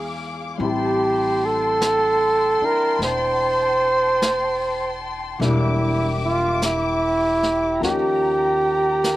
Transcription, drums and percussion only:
0.61 brush sweep
1.81 brush sweep, snare, hi-hat pedal
3.01 brush sweep, snare
4.22 brush sweep, snare, hi-hat pedal
5.42 brush sweep, snare
6.62 brush sweep, snare, hi-hat pedal
7.43 snare
7.83 brush sweep, snare
9.04 brush sweep, snare, hi-hat pedal

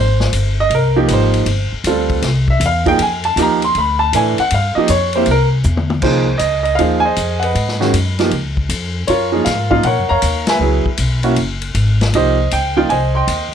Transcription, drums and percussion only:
0.20 snare
0.33 hi-hat pedal, ride
0.71 ride
1.08 hi-hat pedal, ride
1.34 ride
1.46 ride
1.84 hi-hat pedal, ride
2.09 kick, ride
2.22 snare, ride
2.48 kick
2.61 hi-hat pedal, ride
2.86 kick, ride
2.99 ride
3.24 ride
3.37 hi-hat pedal, ride
3.62 ride
3.75 ride
4.13 hi-hat pedal, ride
4.38 ride
4.50 ride
4.88 hi-hat pedal, ride
5.13 ride
5.26 ride
5.63 hi-hat pedal
5.77 mid tom
5.90 mid tom
6.02 kick, crash
6.39 hi-hat pedal, ride
6.65 ride
6.79 ride
7.16 hi-hat pedal, ride
7.42 ride
7.55 ride
7.68 snare
7.81 snare
7.94 hi-hat pedal, ride
8.19 snare, ride
8.31 ride
8.57 kick
8.69 hi-hat pedal, ride
9.08 ride
9.46 snare, hi-hat pedal, ride
9.71 kick
9.83 ride
10.22 hi-hat pedal, ride
10.47 snare, ride
10.86 kick
10.97 hi-hat pedal, ride
11.23 ride
11.36 ride
11.62 ride
11.75 hi-hat pedal, ride
12.01 snare, ride
12.14 ride
12.51 hi-hat pedal, ride
12.90 ride
13.28 hi-hat pedal, ride

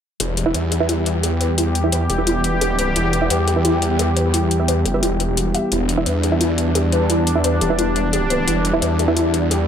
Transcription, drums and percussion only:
0.20 closed hi-hat
0.37 closed hi-hat
0.54 closed hi-hat
0.72 closed hi-hat
0.89 closed hi-hat
1.06 closed hi-hat
1.23 closed hi-hat
1.41 closed hi-hat
1.58 closed hi-hat
1.75 closed hi-hat
1.92 closed hi-hat
2.10 closed hi-hat
2.27 closed hi-hat
2.44 closed hi-hat
2.61 closed hi-hat
2.79 closed hi-hat
2.96 closed hi-hat
3.13 closed hi-hat
3.30 closed hi-hat
3.48 closed hi-hat
3.65 closed hi-hat
3.82 closed hi-hat
3.99 closed hi-hat
4.17 closed hi-hat
4.34 closed hi-hat
4.51 closed hi-hat
4.68 closed hi-hat
4.86 closed hi-hat
5.03 closed hi-hat
5.20 closed hi-hat
5.37 closed hi-hat
5.55 closed hi-hat
5.72 closed hi-hat
5.89 closed hi-hat
6.06 closed hi-hat
6.23 closed hi-hat
6.41 closed hi-hat
6.58 closed hi-hat
6.75 closed hi-hat
6.92 closed hi-hat
7.10 closed hi-hat
7.27 closed hi-hat
7.44 closed hi-hat
7.61 closed hi-hat
7.79 closed hi-hat
7.96 closed hi-hat
8.13 closed hi-hat
8.30 closed hi-hat
8.48 closed hi-hat
8.65 closed hi-hat
8.82 closed hi-hat
8.99 closed hi-hat
9.17 closed hi-hat
9.34 closed hi-hat
9.51 closed hi-hat

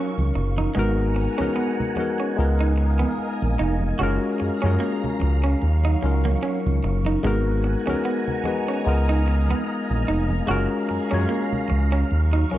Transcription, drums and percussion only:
0.19 high conga
0.36 low conga
0.57 high conga
0.76 muted conga, low conga
1.16 muted conga
1.40 high conga
1.57 muted conga
1.80 low conga
1.96 muted conga, high conga
3.00 high conga
3.18 muted conga
3.42 high conga
3.60 muted conga, low conga
3.81 high conga
3.99 muted conga, low conga
4.40 muted conga
4.64 high conga
4.81 muted conga
5.04 low conga
5.20 muted conga, high conga
5.61 muted conga
6.04 muted conga
6.25 high conga
6.42 muted conga
6.67 high conga
6.83 muted conga, low conga
7.04 high conga
7.23 muted conga, low conga
7.88 high conga
8.05 muted conga
8.28 low conga
8.44 muted conga, high conga
9.28 muted conga
9.49 high conga
9.91 high conga
10.09 muted conga, low conga
10.29 high conga
10.48 muted conga, low conga
10.88 muted conga
11.13 high conga
11.31 muted conga
11.53 low conga
11.69 high conga
12.11 muted conga
12.53 muted conga

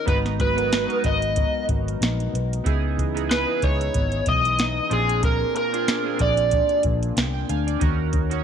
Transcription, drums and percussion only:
0.07 kick, closed hi-hat
0.26 snare, closed hi-hat
0.40 kick, closed hi-hat
0.58 closed hi-hat
0.72 snare, closed hi-hat
0.90 closed hi-hat
1.04 kick, closed hi-hat
1.22 closed hi-hat
1.36 kick, closed hi-hat
1.69 kick, closed hi-hat
1.88 closed hi-hat
2.02 snare, closed hi-hat
2.20 closed hi-hat
2.35 closed hi-hat
2.53 closed hi-hat
2.66 kick, closed hi-hat
2.98 kick, closed hi-hat
3.17 closed hi-hat
3.31 snare, closed hi-hat
3.62 kick, closed hi-hat
3.81 closed hi-hat
3.94 kick, closed hi-hat
4.12 closed hi-hat
4.26 kick, closed hi-hat
4.45 closed hi-hat
4.59 snare, closed hi-hat
4.91 closed hi-hat
5.09 closed hi-hat
5.23 kick, closed hi-hat
5.56 closed hi-hat
5.74 closed hi-hat
5.88 snare, closed hi-hat
6.19 kick, closed hi-hat
6.37 closed hi-hat
6.51 kick, closed hi-hat
6.69 closed hi-hat
6.83 kick, closed hi-hat
7.03 closed hi-hat
7.17 snare, closed hi-hat
7.49 closed hi-hat
7.68 closed hi-hat
7.81 kick, closed hi-hat
8.13 kick, closed hi-hat
8.31 closed hi-hat

